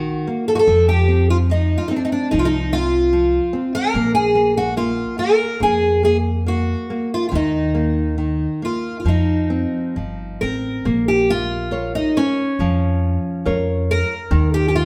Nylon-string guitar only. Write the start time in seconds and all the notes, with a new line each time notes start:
Already playing: D#3
0.27 A#3
0.67 F3
1.08 C4
1.50 F3
1.91 C4
2.32 F3
2.72 C4
3.13 F3
3.53 C4
3.95 A#3
4.35 A#3
4.77 A#3
5.18 A#3
5.60 A#3
6.03 A#3
6.46 A#3
6.90 A#3
7.31 D#3
7.75 A#3
8.18 D#3
8.62 A#3
9.06 F3
9.50 C4
9.96 F3
10.42 C4
10.85 A#3
11.71 F4 A#4 C#5
12.60 F3
13.46 F4 A#4 C#5
14.31 D#3